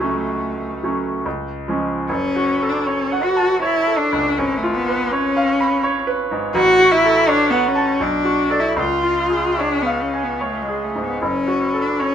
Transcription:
Already playing: C#2 A3
0.00 F#3 A3 C#4
0.83 F#3 A3 C#4
1.26 C#2
1.68 F3 G#3 C#4
2.09 F#1 C#4
2.36 F#4
2.62 A4
2.69 D4
2.87 C#4 C#5
3.12 F#5
3.23 F#4
3.37 A5
3.62 E4 C#5
3.87 A4
3.99 D4
4.13 C#2
4.38 G#1 C#4
4.57 A3
4.63 F4
4.73 B3
4.88 B4
5.11 C#4 C#5
5.37 F5
5.60 B5
5.83 C#5
6.07 B4
6.31 G#2
6.55 A1 F#4
6.79 F#4
6.92 E4
7.05 A4
7.28 D4 C#5
7.50 B3 F#5
7.68 C#4
7.75 A5
8.00 B1 D4
8.25 F#4
8.50 A4 D5
8.60 E4
8.76 C#2 F4
9.03 F4
9.30 G#4
9.58 D4 C#5
9.82 B3 F5
10.02 C#4
10.14 G#5
10.23 B3
10.41 A3 C#5
10.62 G#3
10.68 G#4
10.83 A3
10.95 G#2
11.05 B3
11.22 F#1 C#4
11.48 F#4
11.74 A4
11.81 D4
12.00 C#4 C#5

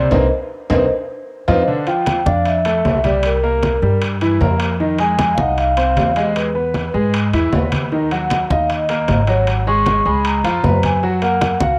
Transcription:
Already playing: D5
0.11 C2 A#3 C4 D#4 A#4 C5 D#5, low conga, high timbale
0.70 C2 A#3 C4 D#4 A#4 C5 D#5, low conga, high timbale
1.48 F2 C4 D#4 F4 C5 D#5 F5, low conga, high timbale
1.67 D3 D4, high conga
1.87 F3 F4 G5, high conga, high timbale
2.07 high conga, high timbale, low timbale
2.26 F2 D4 D5 F5, high conga
2.46 E5, high conga, high timbale
2.65 A3 A4, high conga, high timbale
2.85 C2, high conga, high timbale, low timbale
3.04 G3 G4 D5, high conga, high timbale
3.23 A#4, high conga, high timbale
3.43 A#3 A#4, high conga
3.63 high conga, high timbale, low timbale
3.82 G2 G3 G4, high conga
4.02 high conga, high timbale
4.21 E3 E4, high conga, high timbale
4.41 F2 A#3 A#4, high conga, low timbale
4.60 high timbale
4.80 D#3 D#4, high conga
4.99 G#3 G#4 G#5, high conga, high timbale
5.19 high conga, high timbale, low timbale
5.34 C2 F5, high conga
5.39 D#4 D#5 F#5
5.57 F5, high conga, high timbale
5.77 C4 C5, high conga, high timbale
5.96 E2, high conga, high timbale, low timbale
6.16 G#3 G#4 D#5, high timbale
6.36 B4, high conga, high timbale
6.55 B3 B4, high conga
6.74 high conga, high timbale, low timbale
6.94 G#2 G#3 G#4, high conga
7.14 high conga, high timbale
7.33 E2 E3 E4, high conga, high timbale
7.53 D#2 B3 B4, high conga, low timbale
7.72 high conga, high timbale
7.92 D#3 D#4, high conga
8.11 F#3 F#4 F#5, high conga, high timbale
8.30 high conga, high timbale, low timbale
8.50 D#2 D#4 D#5 F5, high conga
8.70 D#5, high conga, high timbale
8.89 A#3 A#4, high conga, high timbale
9.08 G#1, high conga, high timbale, low timbale
9.27 F#3 F#4 C#5, high timbale
9.47 high conga, high timbale
9.67 G#3 G#4 C#6, high conga
9.86 high conga, high timbale, low timbale
10.05 C#2 G#3 G#4 B5, high conga
10.25 A#5, high conga, high timbale
10.44 F2 F3 F4, high conga, high timbale
10.63 F#2 B3 B4, high conga, low timbale
10.83 G#5, high conga, high timbale
11.03 F#3 F#4, high conga
11.22 A#3 A#4 F#5, high conga, high timbale
11.41 high conga, high timbale, low timbale
11.60 C#2 F#4 F5 F#5, high conga

